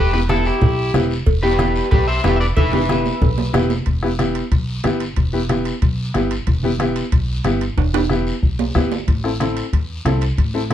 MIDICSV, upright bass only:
0, 0, Header, 1, 2, 480
1, 0, Start_track
1, 0, Key_signature, 1, "minor"
1, 0, Tempo, 325380
1, 1871, Time_signature, 4, 2, 24, 8
1, 15841, End_track
2, 0, Start_track
2, 0, Title_t, "Upright bass"
2, 0, Program_c, 0, 32
2, 0, Note_on_c, 0, 28, 91
2, 722, Note_off_c, 0, 28, 0
2, 913, Note_on_c, 0, 35, 86
2, 1296, Note_off_c, 0, 35, 0
2, 1387, Note_on_c, 0, 28, 97
2, 1772, Note_off_c, 0, 28, 0
2, 1870, Note_on_c, 0, 28, 91
2, 2636, Note_off_c, 0, 28, 0
2, 2827, Note_on_c, 0, 35, 85
2, 3210, Note_off_c, 0, 35, 0
2, 3312, Note_on_c, 0, 28, 100
2, 3693, Note_off_c, 0, 28, 0
2, 3785, Note_on_c, 0, 28, 94
2, 4552, Note_off_c, 0, 28, 0
2, 4745, Note_on_c, 0, 35, 88
2, 5128, Note_off_c, 0, 35, 0
2, 5223, Note_on_c, 0, 28, 97
2, 5607, Note_off_c, 0, 28, 0
2, 5705, Note_on_c, 0, 28, 82
2, 6472, Note_off_c, 0, 28, 0
2, 6661, Note_on_c, 0, 35, 81
2, 7046, Note_off_c, 0, 35, 0
2, 7146, Note_on_c, 0, 31, 80
2, 7529, Note_off_c, 0, 31, 0
2, 7628, Note_on_c, 0, 28, 84
2, 8395, Note_off_c, 0, 28, 0
2, 8587, Note_on_c, 0, 35, 80
2, 8971, Note_off_c, 0, 35, 0
2, 9066, Note_on_c, 0, 31, 77
2, 9450, Note_off_c, 0, 31, 0
2, 9547, Note_on_c, 0, 28, 83
2, 10315, Note_off_c, 0, 28, 0
2, 10507, Note_on_c, 0, 35, 86
2, 10891, Note_off_c, 0, 35, 0
2, 10987, Note_on_c, 0, 31, 80
2, 11372, Note_off_c, 0, 31, 0
2, 11469, Note_on_c, 0, 28, 84
2, 12237, Note_off_c, 0, 28, 0
2, 12429, Note_on_c, 0, 35, 78
2, 12814, Note_off_c, 0, 35, 0
2, 12911, Note_on_c, 0, 31, 78
2, 13295, Note_off_c, 0, 31, 0
2, 13390, Note_on_c, 0, 33, 86
2, 14159, Note_off_c, 0, 33, 0
2, 14352, Note_on_c, 0, 40, 79
2, 14736, Note_off_c, 0, 40, 0
2, 14825, Note_on_c, 0, 36, 84
2, 15212, Note_off_c, 0, 36, 0
2, 15313, Note_on_c, 0, 33, 86
2, 15841, Note_off_c, 0, 33, 0
2, 15841, End_track
0, 0, End_of_file